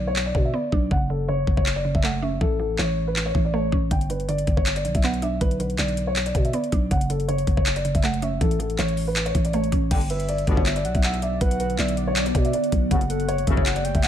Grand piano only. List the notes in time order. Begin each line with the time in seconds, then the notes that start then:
0.07 C#5
0.26 D5
0.45 E5
0.54 D5
0.91 F#5
1.10 A4
1.28 C#5
1.57 C#5
1.76 D5
1.95 E5
2.03 F#5
2.22 E5
2.41 A4
2.60 A4
2.79 C#5
3.08 B4
3.26 C#5
3.45 D5
3.54 C#5
3.91 G5
4.10 B4
4.29 D5
4.57 C#5
4.76 D5
4.95 E5
5.04 F#5
5.23 E5
5.41 B4
5.59 B4
5.79 D5
6.07 C#5
6.26 D5
6.45 E5
6.54 D5
6.91 F#5
7.10 A4
7.28 C#5
7.57 C#5
7.76 D5
7.95 E5
8.04 F#5
8.22 E5
8.41 A4
8.60 A4
8.79 C#5
9.08 B4
9.26 C#5
9.45 D5
9.54 C#5
9.91 G5
10.10 B4
10.29 D5
10.57 C#5
10.76 D5
10.95 E5
11.04 F#5
11.23 E5
11.41 B4
11.60 B4
11.79 D5
12.07 C#5
12.26 D5
12.45 E5
12.54 D5
12.91 F#5
13.10 A4
13.28 C#5
13.57 C#5
13.76 D5
13.95 E5
14.03 F#5